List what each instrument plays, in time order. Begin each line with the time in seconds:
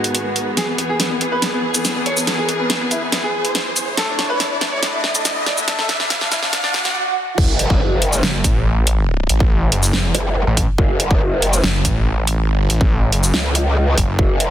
Already playing: string section G#2 D#3 B3 G#4, grand piano F#4, riser
0.04 closed hi-hat
0.15 closed hi-hat
0.36 closed hi-hat
0.57 string section E2 E3 G#4, grand piano G#4, snare, closed hi-hat
0.68 grand piano B3
0.78 grand piano B3, closed hi-hat
0.89 grand piano G#4
1.00 grand piano B3, snare, closed hi-hat
1.11 grand piano B3
1.21 grand piano B3, closed hi-hat
1.32 grand piano B4
1.42 grand piano B3, snare, closed hi-hat
1.53 grand piano B3
1.74 grand piano B3, closed hi-hat, shaker
1.85 grand piano B3, snare, closed hi-hat, shaker
1.96 grand piano B3
2.06 grand piano C#5, closed hi-hat
2.17 grand piano B3, shaker
2.27 grand piano B3, snare, closed hi-hat
2.38 grand piano G#4
2.49 grand piano B3, closed hi-hat
2.60 grand piano B3
2.70 snare, closed hi-hat
2.81 grand piano B3
2.91 grand piano E4, closed hi-hat, shaker
3.02 grand piano B3
3.12 grand piano B3, snare, closed hi-hat
3.23 grand piano G#4
3.45 closed hi-hat
3.55 snare, closed hi-hat
3.76 closed hi-hat, shaker
3.97 string section D2 D3 A3 E4, grand piano A4, snare, closed hi-hat
4.09 grand piano D4
4.19 grand piano D4, snare, closed hi-hat
4.30 grand piano B4
4.40 grand piano D4, snare, closed hi-hat
4.51 grand piano D4
4.61 grand piano D4, snare, closed hi-hat
4.72 grand piano C#5
4.83 grand piano D4, snare, closed hi-hat
4.93 grand piano D4
5.04 snare
5.15 grand piano D4, closed hi-hat, shaker
5.25 grand piano D4, snare, closed hi-hat, shaker
5.36 grand piano D4
5.46 grand piano D5, snare, closed hi-hat
5.57 grand piano D4, shaker
5.68 grand piano D4, snare, closed hi-hat
5.79 grand piano A4, snare
5.89 grand piano D4, snare, closed hi-hat
6.00 grand piano D4, snare
6.10 snare, closed hi-hat
6.21 grand piano D4, snare
6.31 grand piano E4, snare, closed hi-hat, shaker
6.43 grand piano D4, snare
6.53 grand piano D4, snare, closed hi-hat, swell
6.64 grand piano D4, snare
6.74 snare
6.85 snare, closed hi-hat
7.38 wobble bass F#1, kick, crash, impact
7.59 closed hi-hat
7.70 kick
8.02 closed hi-hat
8.13 shaker
8.23 detuned saw bass F#1, snare
8.44 detuned saw bass A1, kick, closed hi-hat, shaker
8.87 closed hi-hat
9.29 detuned saw bass A1, closed hi-hat
9.40 kick
9.72 detuned saw bass F#1, closed hi-hat
9.83 shaker
9.93 snare
10.14 wobble bass F#1, closed hi-hat
10.47 detuned saw bass A1
10.57 kick, closed hi-hat
10.78 wobble bass F#1, kick
11.00 closed hi-hat
11.11 kick
11.42 closed hi-hat
11.53 shaker
11.64 detuned saw bass F#1, snare
11.85 detuned saw bass A1, kick, closed hi-hat, shaker
12.27 closed hi-hat
12.44 detuned saw bass G#1
12.70 detuned saw bass A1, closed hi-hat
12.81 kick
13.12 detuned saw bass F#1, closed hi-hat
13.23 shaker
13.34 wobble bass C#2, snare
13.55 closed hi-hat
13.97 detuned saw bass F#1, kick, closed hi-hat
14.19 wobble bass F#1, kick
14.40 closed hi-hat